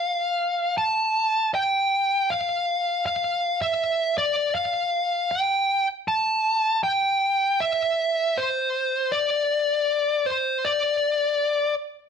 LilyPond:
\new Staff \with { instrumentName = "Lead electric guitar" } { \time 4/4 \key d \minor \tempo 4 = 79 f''4 a''4 g''4 f''4 | f''8. e''8. d''8 f''4 g''8. r16 | a''4 g''4 e''4 c''4 | d''4. c''8 d''4. r8 | }